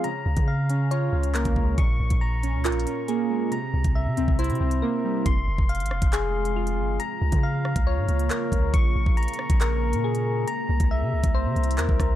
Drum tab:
HH |x-----------------x-----------------x-----------x-----------------x-----------x-----------------|x-----------------x-----------------x-----------x---x---x---x-----------x-----------------------|x-----------------x-----------------x-----------x--x--x--x--------x-----------------------------|x-----------------------x--x--x--x--------x-----x-----------------x-----------x-----------------|
CP |------------------------------------------------------------------------x-----------------------|------------------------------------------------x-----------------------------------------------|------------------------------------------------------------------------------------------------|------------------------------------------------x-----------------------------------------------|
SD |------------------------------------------------------------------------------------------------|------------------------------------------------------------------------------------------------|------------------------------------------------------------------------------------------------|------------------------------------r-----------------------------------------------------------|
BD |------------------o-----------------------------------------------------------o-----o-----------|o-----------------o-----------------------------------------------------------------------------|------------------o-----------------------o-----------------------------------------------------|o-----------------o-----------------------o-----------------------------------------------------|

HH |x-----------------x-----------------------x-----------------x-----x-----------------x-----------|x-----------------------x--x--x--x--------x-----x-----------------x-----------x-----------------|x-----------------x-----------------------x-----------------x---x---x---------------x-----------|
CP |------------------------------------------------------------------------x-----------------------|------------------------------------------------x-----------------------------------------------|------------------------------------------------------------------------x-----------------------|
SD |------------------------------------r-----------------------------------------------------------|------------------------------------r-----------------------------------------------------------|------------------------------------------------------------------------------------r-----------|
BD |------------------o-----------------------o-----------------------------------------o-----------|o-----------------o-----------------------o-----------------------------------------------------|------------------o-----------------------o-----------------------------------o-----o-----------|